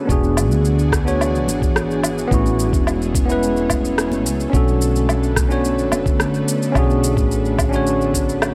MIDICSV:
0, 0, Header, 1, 5, 480
1, 0, Start_track
1, 0, Tempo, 555556
1, 78, Time_signature, 4, 2, 24, 8
1, 7379, End_track
2, 0, Start_track
2, 0, Title_t, "Tine electric piano"
2, 0, Program_c, 0, 4
2, 0, Control_c, 0, 64, 127
2, 0, Note_on_c, 0, 61, 87
2, 0, Note_on_c, 0, 62, 81
2, 0, Note_on_c, 0, 66, 78
2, 0, Note_on_c, 0, 73, 90
2, 44, Note_on_c, 0, 59, 83
2, 63, Note_off_c, 0, 62, 0
2, 63, Note_on_c, 0, 62, 82
2, 82, Note_off_c, 0, 66, 0
2, 82, Note_on_c, 0, 66, 77
2, 90, Control_c, 0, 64, 0
2, 94, Note_off_c, 0, 61, 0
2, 97, Note_off_c, 0, 73, 0
2, 101, Note_on_c, 0, 68, 98
2, 263, Control_c, 0, 64, 127
2, 872, Note_off_c, 0, 59, 0
2, 881, Note_off_c, 0, 62, 0
2, 891, Note_off_c, 0, 66, 0
2, 901, Note_off_c, 0, 68, 0
2, 904, Note_on_c, 0, 59, 82
2, 912, Note_on_c, 0, 62, 69
2, 923, Note_on_c, 0, 66, 78
2, 932, Note_on_c, 0, 73, 91
2, 1083, Note_off_c, 0, 59, 0
2, 1087, Note_off_c, 0, 62, 0
2, 1092, Note_off_c, 0, 66, 0
2, 1097, Note_off_c, 0, 73, 0
2, 1967, Note_on_c, 0, 59, 103
2, 1987, Note_on_c, 0, 61, 88
2, 2007, Note_on_c, 0, 64, 88
2, 2009, Control_c, 0, 64, 0
2, 2024, Note_on_c, 0, 66, 113
2, 2155, Control_c, 0, 64, 127
2, 2794, Note_off_c, 0, 59, 0
2, 2803, Note_off_c, 0, 61, 0
2, 2810, Note_on_c, 0, 59, 88
2, 2813, Note_off_c, 0, 64, 0
2, 2822, Note_off_c, 0, 66, 0
2, 2830, Note_on_c, 0, 61, 77
2, 2848, Note_on_c, 0, 64, 83
2, 2866, Note_on_c, 0, 71, 95
2, 3874, Note_off_c, 0, 61, 0
2, 3875, Note_off_c, 0, 59, 0
2, 3884, Note_on_c, 0, 61, 89
2, 3894, Note_off_c, 0, 64, 0
2, 3903, Note_off_c, 0, 71, 0
2, 3904, Note_on_c, 0, 62, 79
2, 3923, Note_on_c, 0, 66, 83
2, 3928, Control_c, 0, 64, 0
2, 3944, Note_on_c, 0, 69, 99
2, 4073, Control_c, 0, 64, 127
2, 4712, Note_off_c, 0, 61, 0
2, 4722, Note_off_c, 0, 62, 0
2, 4732, Note_off_c, 0, 66, 0
2, 4741, Note_on_c, 0, 61, 83
2, 4742, Note_off_c, 0, 69, 0
2, 4751, Note_on_c, 0, 62, 75
2, 4760, Note_on_c, 0, 66, 75
2, 4770, Note_on_c, 0, 73, 91
2, 4921, Note_off_c, 0, 61, 0
2, 4926, Note_off_c, 0, 62, 0
2, 4931, Note_off_c, 0, 66, 0
2, 4936, Note_off_c, 0, 73, 0
2, 5805, Note_on_c, 0, 61, 97
2, 5826, Note_on_c, 0, 62, 88
2, 5846, Note_on_c, 0, 66, 94
2, 5862, Note_on_c, 0, 68, 111
2, 6633, Note_off_c, 0, 61, 0
2, 6643, Note_off_c, 0, 62, 0
2, 6646, Note_on_c, 0, 61, 88
2, 6653, Note_off_c, 0, 66, 0
2, 6661, Note_off_c, 0, 68, 0
2, 6663, Note_on_c, 0, 62, 82
2, 6683, Note_on_c, 0, 66, 82
2, 6701, Note_on_c, 0, 73, 96
2, 7379, Note_off_c, 0, 61, 0
2, 7379, Note_off_c, 0, 62, 0
2, 7379, Note_off_c, 0, 66, 0
2, 7379, Note_off_c, 0, 73, 0
2, 7379, End_track
3, 0, Start_track
3, 0, Title_t, "Ambient pad"
3, 0, Program_c, 1, 92
3, 70, Note_on_c, 1, 52, 81
3, 71, Note_on_c, 1, 62, 76
3, 72, Note_on_c, 1, 68, 86
3, 73, Note_on_c, 1, 66, 73
3, 1975, Note_off_c, 1, 52, 0
3, 1975, Note_off_c, 1, 62, 0
3, 1976, Note_off_c, 1, 66, 0
3, 1976, Note_off_c, 1, 68, 0
3, 1997, Note_on_c, 1, 56, 79
3, 2002, Note_on_c, 1, 57, 70
3, 2003, Note_on_c, 1, 61, 88
3, 3898, Note_off_c, 1, 56, 0
3, 3901, Note_off_c, 1, 61, 0
3, 3908, Note_on_c, 1, 50, 81
3, 3910, Note_on_c, 1, 59, 70
3, 7379, Note_off_c, 1, 50, 0
3, 7379, Note_off_c, 1, 57, 0
3, 7379, Note_off_c, 1, 59, 0
3, 7379, End_track
4, 0, Start_track
4, 0, Title_t, "Fretless electric bass"
4, 0, Program_c, 2, 35
4, 79, Note_on_c, 2, 28, 90
4, 441, Note_off_c, 2, 28, 0
4, 441, Note_on_c, 2, 38, 72
4, 1279, Note_off_c, 2, 38, 0
4, 1279, Note_on_c, 2, 32, 74
4, 1944, Note_off_c, 2, 32, 0
4, 1997, Note_on_c, 2, 33, 86
4, 2359, Note_off_c, 2, 33, 0
4, 2359, Note_on_c, 2, 28, 80
4, 3678, Note_off_c, 2, 28, 0
4, 3678, Note_on_c, 2, 37, 82
4, 3849, Note_off_c, 2, 37, 0
4, 3917, Note_on_c, 2, 35, 84
4, 5117, Note_off_c, 2, 35, 0
4, 5117, Note_on_c, 2, 30, 81
4, 5542, Note_off_c, 2, 30, 0
4, 5835, Note_on_c, 2, 35, 90
4, 6194, Note_off_c, 2, 35, 0
4, 6194, Note_on_c, 2, 33, 76
4, 7379, Note_off_c, 2, 33, 0
4, 7379, End_track
5, 0, Start_track
5, 0, Title_t, "Drums"
5, 77, Note_on_c, 9, 36, 111
5, 86, Note_on_c, 9, 82, 44
5, 163, Note_off_c, 9, 36, 0
5, 172, Note_off_c, 9, 82, 0
5, 205, Note_on_c, 9, 82, 20
5, 291, Note_off_c, 9, 82, 0
5, 320, Note_on_c, 9, 77, 69
5, 325, Note_on_c, 9, 82, 79
5, 407, Note_off_c, 9, 77, 0
5, 412, Note_off_c, 9, 82, 0
5, 444, Note_on_c, 9, 82, 35
5, 531, Note_off_c, 9, 82, 0
5, 561, Note_on_c, 9, 82, 41
5, 647, Note_off_c, 9, 82, 0
5, 683, Note_on_c, 9, 82, 23
5, 769, Note_off_c, 9, 82, 0
5, 797, Note_on_c, 9, 36, 96
5, 801, Note_on_c, 9, 37, 72
5, 806, Note_on_c, 9, 82, 70
5, 884, Note_off_c, 9, 36, 0
5, 887, Note_off_c, 9, 37, 0
5, 892, Note_off_c, 9, 82, 0
5, 929, Note_on_c, 9, 82, 32
5, 1016, Note_off_c, 9, 82, 0
5, 1046, Note_on_c, 9, 77, 66
5, 1051, Note_on_c, 9, 82, 42
5, 1132, Note_off_c, 9, 77, 0
5, 1138, Note_off_c, 9, 82, 0
5, 1169, Note_on_c, 9, 82, 21
5, 1256, Note_off_c, 9, 82, 0
5, 1280, Note_on_c, 9, 63, 79
5, 1285, Note_on_c, 9, 82, 74
5, 1366, Note_off_c, 9, 63, 0
5, 1372, Note_off_c, 9, 82, 0
5, 1398, Note_on_c, 9, 36, 106
5, 1407, Note_on_c, 9, 82, 34
5, 1485, Note_off_c, 9, 36, 0
5, 1494, Note_off_c, 9, 82, 0
5, 1521, Note_on_c, 9, 37, 70
5, 1526, Note_on_c, 9, 82, 41
5, 1607, Note_off_c, 9, 37, 0
5, 1613, Note_off_c, 9, 82, 0
5, 1649, Note_on_c, 9, 82, 20
5, 1735, Note_off_c, 9, 82, 0
5, 1758, Note_on_c, 9, 77, 74
5, 1763, Note_on_c, 9, 82, 73
5, 1845, Note_off_c, 9, 77, 0
5, 1850, Note_off_c, 9, 82, 0
5, 1886, Note_on_c, 9, 82, 34
5, 1972, Note_off_c, 9, 82, 0
5, 1998, Note_on_c, 9, 36, 107
5, 2005, Note_on_c, 9, 82, 43
5, 2085, Note_off_c, 9, 36, 0
5, 2091, Note_off_c, 9, 82, 0
5, 2126, Note_on_c, 9, 82, 22
5, 2212, Note_off_c, 9, 82, 0
5, 2241, Note_on_c, 9, 82, 71
5, 2328, Note_off_c, 9, 82, 0
5, 2359, Note_on_c, 9, 36, 102
5, 2365, Note_on_c, 9, 82, 35
5, 2445, Note_off_c, 9, 36, 0
5, 2451, Note_off_c, 9, 82, 0
5, 2480, Note_on_c, 9, 77, 64
5, 2485, Note_on_c, 9, 82, 42
5, 2566, Note_off_c, 9, 77, 0
5, 2572, Note_off_c, 9, 82, 0
5, 2609, Note_on_c, 9, 82, 22
5, 2695, Note_off_c, 9, 82, 0
5, 2718, Note_on_c, 9, 36, 101
5, 2725, Note_on_c, 9, 82, 71
5, 2805, Note_off_c, 9, 36, 0
5, 2811, Note_off_c, 9, 82, 0
5, 2847, Note_on_c, 9, 82, 31
5, 2933, Note_off_c, 9, 82, 0
5, 2964, Note_on_c, 9, 82, 40
5, 3050, Note_off_c, 9, 82, 0
5, 3081, Note_on_c, 9, 82, 23
5, 3168, Note_off_c, 9, 82, 0
5, 3194, Note_on_c, 9, 77, 70
5, 3198, Note_on_c, 9, 36, 55
5, 3199, Note_on_c, 9, 82, 70
5, 3280, Note_off_c, 9, 77, 0
5, 3284, Note_off_c, 9, 36, 0
5, 3286, Note_off_c, 9, 82, 0
5, 3325, Note_on_c, 9, 82, 32
5, 3411, Note_off_c, 9, 82, 0
5, 3439, Note_on_c, 9, 37, 73
5, 3445, Note_on_c, 9, 82, 43
5, 3526, Note_off_c, 9, 37, 0
5, 3531, Note_off_c, 9, 82, 0
5, 3556, Note_on_c, 9, 63, 79
5, 3564, Note_on_c, 9, 82, 22
5, 3643, Note_off_c, 9, 63, 0
5, 3651, Note_off_c, 9, 82, 0
5, 3683, Note_on_c, 9, 82, 75
5, 3770, Note_off_c, 9, 82, 0
5, 3802, Note_on_c, 9, 82, 32
5, 3888, Note_off_c, 9, 82, 0
5, 3916, Note_on_c, 9, 36, 102
5, 3924, Note_on_c, 9, 82, 43
5, 4003, Note_off_c, 9, 36, 0
5, 4011, Note_off_c, 9, 82, 0
5, 4043, Note_on_c, 9, 82, 20
5, 4130, Note_off_c, 9, 82, 0
5, 4160, Note_on_c, 9, 82, 75
5, 4247, Note_off_c, 9, 82, 0
5, 4283, Note_on_c, 9, 82, 33
5, 4370, Note_off_c, 9, 82, 0
5, 4397, Note_on_c, 9, 77, 64
5, 4403, Note_on_c, 9, 82, 40
5, 4484, Note_off_c, 9, 77, 0
5, 4489, Note_off_c, 9, 82, 0
5, 4522, Note_on_c, 9, 82, 20
5, 4608, Note_off_c, 9, 82, 0
5, 4635, Note_on_c, 9, 36, 99
5, 4635, Note_on_c, 9, 37, 66
5, 4640, Note_on_c, 9, 82, 68
5, 4721, Note_off_c, 9, 37, 0
5, 4722, Note_off_c, 9, 36, 0
5, 4727, Note_off_c, 9, 82, 0
5, 4759, Note_on_c, 9, 82, 30
5, 4845, Note_off_c, 9, 82, 0
5, 4878, Note_on_c, 9, 82, 38
5, 4965, Note_off_c, 9, 82, 0
5, 5000, Note_on_c, 9, 82, 22
5, 5086, Note_off_c, 9, 82, 0
5, 5113, Note_on_c, 9, 77, 72
5, 5118, Note_on_c, 9, 82, 72
5, 5120, Note_on_c, 9, 63, 78
5, 5199, Note_off_c, 9, 77, 0
5, 5204, Note_off_c, 9, 82, 0
5, 5206, Note_off_c, 9, 63, 0
5, 5235, Note_on_c, 9, 36, 100
5, 5240, Note_on_c, 9, 82, 32
5, 5321, Note_off_c, 9, 36, 0
5, 5326, Note_off_c, 9, 82, 0
5, 5355, Note_on_c, 9, 37, 68
5, 5360, Note_on_c, 9, 82, 39
5, 5441, Note_off_c, 9, 37, 0
5, 5446, Note_off_c, 9, 82, 0
5, 5480, Note_on_c, 9, 82, 19
5, 5566, Note_off_c, 9, 82, 0
5, 5601, Note_on_c, 9, 82, 77
5, 5688, Note_off_c, 9, 82, 0
5, 5723, Note_on_c, 9, 82, 32
5, 5810, Note_off_c, 9, 82, 0
5, 5834, Note_on_c, 9, 36, 100
5, 5834, Note_on_c, 9, 77, 73
5, 5839, Note_on_c, 9, 82, 40
5, 5921, Note_off_c, 9, 36, 0
5, 5921, Note_off_c, 9, 77, 0
5, 5926, Note_off_c, 9, 82, 0
5, 5963, Note_on_c, 9, 82, 19
5, 6050, Note_off_c, 9, 82, 0
5, 6082, Note_on_c, 9, 82, 75
5, 6168, Note_off_c, 9, 82, 0
5, 6194, Note_on_c, 9, 36, 98
5, 6200, Note_on_c, 9, 82, 35
5, 6281, Note_off_c, 9, 36, 0
5, 6286, Note_off_c, 9, 82, 0
5, 6320, Note_on_c, 9, 82, 34
5, 6406, Note_off_c, 9, 82, 0
5, 6439, Note_on_c, 9, 82, 22
5, 6525, Note_off_c, 9, 82, 0
5, 6554, Note_on_c, 9, 36, 94
5, 6554, Note_on_c, 9, 77, 74
5, 6559, Note_on_c, 9, 82, 71
5, 6640, Note_off_c, 9, 77, 0
5, 6641, Note_off_c, 9, 36, 0
5, 6645, Note_off_c, 9, 82, 0
5, 6678, Note_on_c, 9, 82, 31
5, 6765, Note_off_c, 9, 82, 0
5, 6798, Note_on_c, 9, 82, 37
5, 6884, Note_off_c, 9, 82, 0
5, 6924, Note_on_c, 9, 82, 21
5, 7010, Note_off_c, 9, 82, 0
5, 7035, Note_on_c, 9, 36, 51
5, 7040, Note_on_c, 9, 82, 72
5, 7121, Note_off_c, 9, 36, 0
5, 7127, Note_off_c, 9, 82, 0
5, 7165, Note_on_c, 9, 82, 33
5, 7251, Note_off_c, 9, 82, 0
5, 7275, Note_on_c, 9, 37, 71
5, 7275, Note_on_c, 9, 77, 76
5, 7280, Note_on_c, 9, 82, 37
5, 7361, Note_off_c, 9, 37, 0
5, 7361, Note_off_c, 9, 77, 0
5, 7366, Note_off_c, 9, 82, 0
5, 7379, End_track
0, 0, End_of_file